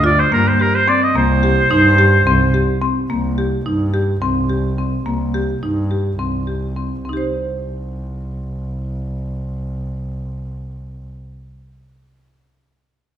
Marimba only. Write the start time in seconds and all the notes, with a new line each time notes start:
0.04 F4
0.32 A#3
0.60 G4
0.88 C4
1.16 A#3
1.43 G4
1.71 D#4
1.98 G4
2.27 C4
2.54 G4
2.82 C4
3.10 A#3
3.38 G4
3.66 D#4
3.94 G4
4.22 C4
4.50 G4
4.78 C4
5.06 A#3
5.34 G4
5.63 D#4
5.91 G4
6.19 C4
6.47 G4
6.76 C4
7.05 C4
7.09 D#4 G4
7.17 C5